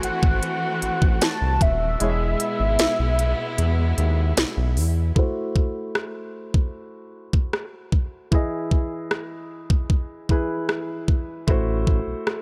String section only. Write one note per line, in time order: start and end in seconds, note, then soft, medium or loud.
0.00 1.97 E3 medium
0.00 1.97 A3 medium
0.00 1.97 C4 medium
0.00 1.97 F#4 medium
2.00 5.13 B2 medium
2.00 5.13 G#3 medium
2.00 5.13 B3 medium
2.00 5.13 E4 medium